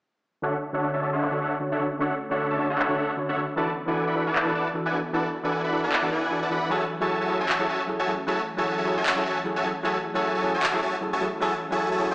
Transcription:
0.42 D3 A3 C#4 D4 F#4 A4 C#5 E5 F#5
0.73 D3 D4 F#4 A4 C#5 E5 F#5
0.93 D4 A4 C#5 E5 A5
1.01 D3 D4 F#4 C#5
1.13 D4 A4 C#5 E5 F#5
1.22 clap
1.32 D3 D4 F#4 C#5
1.41 D4 A4 C#5 E5 F#5
1.60 D3 D4 F#4 C#5
1.72 D4 A4 C#5 E5 F#5
1.80 D3 D4 F#4 C#5
1.99 D3 D4 F#4 A4 C#5 E5 F#5
2.30 D3 D4 F#4 A4 C#5 E5 F#5
2.50 D4 A4 C#5 E5 A5
2.58 D3 D4 F#4 C#5
2.70 D4 A4 C#5 E5 F#5
2.79 clap
2.89 D3 D4 F#4 C#5
2.98 D4 A4 C#5 E5 F#5
3.17 D3 D4 F#4 C#5
3.29 D4 A4 C#5 E5 F#5
3.36 D3 D4 F#4 C#5
3.56 E3 B3 D4 E4 F#4 A4 B4 D5 F#5 A5
3.86 E3 D4 E4 F#4 A4 B4 D5 F#5 G#5
4.07 E4 B4 D5 F#5 B5
4.15 E3 D4 F#4 A4
4.27 E4 B4 D5 F#5 A5
4.35 clap
4.45 E3 D4 F#4 A4
4.55 E4 B4 D5 F#5 A5
4.74 E3 D4 F#4 A4
4.86 E4 B4 D5 F#5 G#5
4.93 E3 D4 F#4 A4
5.13 E3 D4 E4 F#4 A4 B4 D5 F#5 A5
5.43 E3 D4 E4 F#4 A4 B4 D5 F#5 G#5
5.64 E4 B4 D5 F#5 B5
5.72 E3 D4 F#4 A4
5.84 E4 B4 D5 F#5 A5
5.92 clap
6.02 E3 D4 F#4 A4
6.12 E4 B4 D5 F#5 G#5
6.31 E3 D4 F#4 A4
6.42 E4 B4 D5 F#5 A5
6.50 E3 D4 E4 F#4 A4 B4 D5 F#5 B5
6.70 F#3 A3 C#4 E4 F#4 G#4 A4 C#5 E5 G#5 A5
7.00 F#3 E4 F#4 G#4 A4 C#5 E5 G#5 A5
7.21 F#4 C#5 E5 G#5 A5
7.29 F#3 E4 G#4 A4
7.41 F#4 C#5 E5 G#5 A5
7.49 clap
7.59 F#3 E4 G#4 A4
7.69 F#4 C#5 E5 G#5 A5
7.87 F#3 E4 G#4 A4
7.99 F#4 C#5 E5 G#5 A5
8.07 F#3 E4 G#4 A4
8.27 F#3 E4 F#4 G#4 A4 C#5 E5 G#5 A5
8.57 F#3 E4 F#4 G#4 A4 C#5 E5 G#5 A5
8.78 F#4 C#5 E5 G#5 A5
8.85 F#3 E4 G#4 A4
8.97 F#4 C#5 E5 G#5 A5
9.06 clap
9.16 F#3 E4 G#4 A4
9.26 F#4 C#5 E5 G#5 A5
9.44 F#3 E4 G#4 A4
9.56 F#4 C#5 E5 G#5 A5
9.64 F#3 E4 G#4 A4
9.83 F#3 E4 F#4 G#4 A4 C#5 E5 G#5 A5
10.14 F#3 E4 F#4 G#4 A4 C#5 E5 G#5 A5
10.35 F#4 C#5 E5 G#5 A5
10.42 F#3 E4 G#4 A4
10.54 F#4 C#5 E5 G#5 A5
10.63 clap
10.73 F#3 E4 G#4 A4
10.82 F#4 C#5 E5 G#5 A5
11.01 F#3 E4 G#4 A4
11.13 F#4 C#5 E5 G#5 A5
11.21 F#3 E4 G#4 A4
11.40 F#3 E4 F#4 G#4 A4 C#5 E5 G#5 A5
11.71 F#3 E4 F#4 G#4 A4 C#5 E5 G#5 A5
11.91 F#4 C#5 E5 G#5 A5
11.99 F#3 E4 G#4 A4
12.11 F#4 C#5 E5 G#5 A5

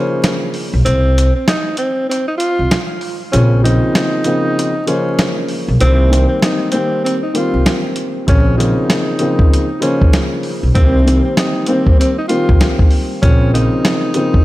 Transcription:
Already playing: C#3 F3 A#3 C#4 C5
0.24 snare, closed hi-hat
0.54 open hi-hat
0.73 B1
0.85 C2 C4, closed hi-hat
1.18 closed hi-hat
1.35 C4
1.48 D#4, snare, closed hi-hat
1.77 C4, closed hi-hat
2.09 C4, closed hi-hat
2.28 D#4
2.38 F4, closed hi-hat
2.59 C2
2.71 snare, closed hi-hat
3.01 open hi-hat
3.32 A#1 C#3 F3 A#3 C4 C#4, closed hi-hat
3.62 C#3 F3 A#3 C4 D#4, closed hi-hat
3.95 snare, closed hi-hat
4.24 C#3 F3 A#3 C4, closed hi-hat
4.59 closed hi-hat
4.86 C#3 F3 A#3 C#4 C5, closed hi-hat
5.19 snare, closed hi-hat
5.48 open hi-hat
5.68 B1
5.80 C2 D#3 G3 A#3 C4, closed hi-hat
6.10 D#3 G3 A#3 C4, closed hi-hat
6.28 C4
6.42 D#4, snare, closed hi-hat
6.72 D#3 G3 A#3 C4, closed hi-hat
7.04 C4, closed hi-hat
7.22 D#4
7.34 D#3 G3 A#3 C4 F4, closed hi-hat
7.54 C2
7.66 snare, closed hi-hat
7.96 closed hi-hat
8.27 A#1 C#3 F3 A#3 C4 C#4, kick, closed hi-hat
8.57 C#3 F3 A#3 C4 D#4, closed hi-hat
8.90 snare, closed hi-hat
9.19 C#3 F3 A#3 C4, closed hi-hat
9.39 kick
9.54 closed hi-hat
9.80 C#3 F3 A#3 C#4 C5, closed hi-hat
10.01 kick
10.13 snare, closed hi-hat
10.43 open hi-hat
10.63 B1
10.74 C2 D#3 G3 A#3 C4, kick, closed hi-hat
11.05 D#3 G3 A#3 C4, closed hi-hat
11.25 C4
11.37 D#4, snare, closed hi-hat
11.66 D#3 G3 A#3 C4, closed hi-hat
11.86 kick
11.99 C4, closed hi-hat
12.18 D#4
12.28 D#3 G3 A#3 C4 F4, closed hi-hat
12.49 C2, kick
12.61 snare, closed hi-hat
12.79 kick
12.91 open hi-hat
13.22 A#1 C#3 F3 A#3 C4 C#4, kick, closed hi-hat
13.52 C#3 F3 A#3 C4 D#4, closed hi-hat
13.85 snare, closed hi-hat
14.14 C#3 F3 A#3 C4, closed hi-hat
14.34 kick

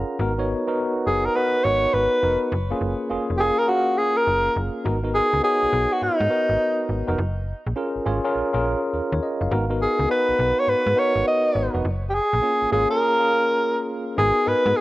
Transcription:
Already playing: C#4 F4 G#4 A#4 F5 F#5 A#5
0.19 G#1 B3 D#4 F#4 A#4
0.38 B3 D#4 F#4 C#5
0.67 B3 D#4 F#4 A#4
1.07 F#1 G#4
1.25 A#4
1.35 B3 D#4 F#4 A#4 B4
1.64 G#1 C#5
1.93 G#1 B4
2.22 F1 B3 D#4 F#4 A#4
2.52 F#1
2.70 A#3 C#4 F4 G#4
2.81 F#1
3.10 F1 A#3 C#4 F4 G#4
3.30 F1
3.37 A#3 C#4 F4 G4 G#4
3.59 A#4
3.68 A#3 C#4 F4 F#4 G#4
3.97 G#4
4.17 A#4
4.27 F#1
4.56 F#1
4.84 G#1 B3 D#4 F#4 A#4
5.03 B3 D#4 F#4 A#4
5.15 G#4
5.33 C#2
5.42 B3 D#4 F#4 G#4 C#5
5.63 B1
5.73 B1
5.92 F#4
6.02 G#2 D#4
6.20 G#2
6.29 B3 D#4 F#4 A#4
6.49 G#1
6.89 G#1
7.07 F1 B3 D#4 F#4 A#4
7.18 F#1
7.67 A#1
7.76 C#4 F4 G#4 A#4
7.96 G#1
8.06 G#1 C#4 F4 G#4 C#5
8.24 C#4 F4 G#4 A#4
8.35 A#1
8.53 A#1 C#4 F4 G#4 A#4
8.94 D#2 A#4
9.12 D#2 C#5
9.23 D#5
9.41 F#1 F5
9.51 G#1 B3 D#4 F#4 A#4
9.69 B3 D#4 F#4 A#4
9.82 G#4
9.99 C#2
10.09 B3 D#4 F#4 B4
10.29 B1
10.39 B1
10.60 C#5
10.68 G#2 B4
10.87 G#2
10.96 B3 D#4 F#4 A#4 C#5
11.16 G#1
11.27 D#5
11.55 G#1
11.74 F1 B3 D#4 F#4 B4
11.85 F#1
12.09 G4
12.14 G#4
12.33 A#1
12.42 A#3 C#4 F4 G#4
12.62 G#1
12.71 G#1 A#3 C#4 F4 G#4
12.90 A#3 C#4 F4 G#4 A#4
13.19 A#3 C#4 F4 G#4
14.17 G#1 B3 D#4 F#4 G#4 A#4
14.46 G#2 B3 D#4 F#4 A#4 B4
14.66 G#2
14.76 G#4

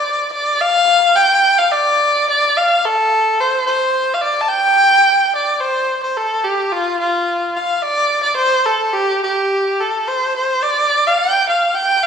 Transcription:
Already playing: D5
0.32 D5
0.60 F5
1.16 G5
1.58 F5
1.72 D5
2.30 D5
2.57 F5
2.85 A4
3.41 C5
3.67 C5
4.14 F5
4.22 D5
4.42 A5
4.48 G5
5.35 D5
5.56 D5
5.60 C5
6.03 C5
6.17 A4
6.45 G4
6.72 F4
7.00 F4
7.56 F5
7.77 F5
7.82 D5
8.23 D5
8.36 C5
8.66 A4
8.93 G4
9.23 G4
9.80 A4
10.08 C5
10.37 C5
10.63 D5
11.07 F5
11.19 G5
11.49 F5
11.75 G5
12.03 F5

